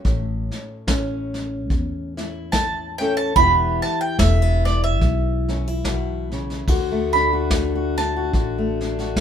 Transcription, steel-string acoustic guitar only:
Already playing: A3 C#4
0.06 A2
0.88 C#4
2.17 E4
3.00 C#4 E4 A4
3.36 E2 E3 B3 E4 G4
4.19 A3
4.42 B3
5.49 C#4
5.68 E4
5.86 B2
6.32 C#3
6.68 D3 F#4
6.92 A3
7.15 D4
7.33 F#4
7.51 A3
7.75 F#4
7.99 D4
8.16 F#4
8.33 D3 F#4
8.58 A3
8.82 D4
9.00 F#4

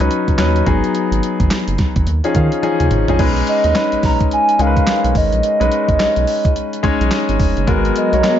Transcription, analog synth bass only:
0.00 C#2
0.28 C#2
0.39 D#2
0.66 G#1
1.12 G#1
1.40 G#1
1.68 F#1
1.96 G#1
2.07 D#2
2.35 D#3
2.80 D#2
2.91 G#1
3.08 A#1
3.19 B1
3.64 D#2
3.93 B1
4.03 B1
4.59 C#2
5.04 B1
5.15 G#1
5.33 A#1
5.61 B1
5.89 G#1
6.00 B1
6.17 B1
6.45 C#2
6.84 B1
7.01 B1
7.29 G#1
7.40 F1
7.57 F#1
7.68 G#1
8.13 B1

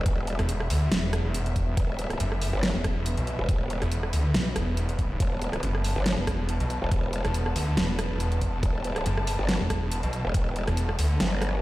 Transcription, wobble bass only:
Already playing: E1
1.77 E1
2.53 G1
3.39 E1
5.20 E1
5.96 G1
6.82 E1
8.63 E1
9.39 G1
10.25 E1
11.20 G1

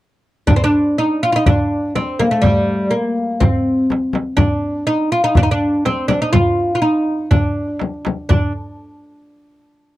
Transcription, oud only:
0.47 D4
0.56 C4
0.64 D4
0.98 D#4
1.23 F4
1.32 D#4 F4
1.47 D4
1.95 C4
2.19 A#3
2.31 A3
2.42 G3
2.91 A#3
3.40 C4
4.37 D4
4.87 D#4
5.12 F4
5.24 D#4
5.37 D4
5.43 D#4
5.51 D4
5.86 C4
6.08 D4
6.22 D#4
6.33 F4
6.75 F4
6.82 D#4
7.31 D4
8.29 D4

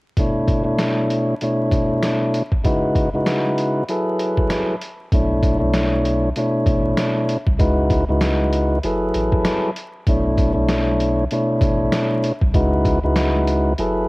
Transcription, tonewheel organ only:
0.18 B2 A3 D4 E4 C#5
0.63 B2 A3 D4 E4 C#5
1.42 B2 A3 D4 E4 C#5
2.64 C#3 G#3 D#4 E4 F#4 B4
3.14 C#3 G#3 D#4 E4 F#4 B4
3.89 F#3 E4 G#4 A4 B4
5.13 B2 A3 D4 E4 C#5
5.58 B2 A3 D4 E4 C#5
6.36 B2 A3 D4 E4 C#5
7.58 C#3 G#3 D#4 E4 F#4 B4
8.09 C#3 G#3 D#4 E4 F#4 B4
8.84 F#3 E4 G#4 A4 B4
10.08 B2 A3 D4 E4 C#5
10.53 B2 A3 D4 E4 C#5
11.31 B2 A3 D4 E4 C#5
12.53 C#3 G#3 D#4 E4 F#4 B4
13.03 C#3 G#3 D#4 E4 F#4 B4
13.79 F#3 E4 G#4 A4 B4

